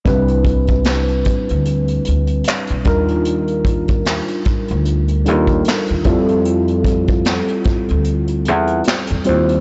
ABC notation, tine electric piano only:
X:1
M:4/4
L:1/8
Q:"Swing 16ths" 1/4=75
K:C
V:1 name="Tine electric piano"
[G,CDEB]6- [G,CDEB] [G,D_EF_B]- | [G,D_EF_B]4- [G,DEFB] [G,DEFAB]2 [G,C=EFA]- | [G,CEFA]6- [G,CEFA] [G,CEFc] |]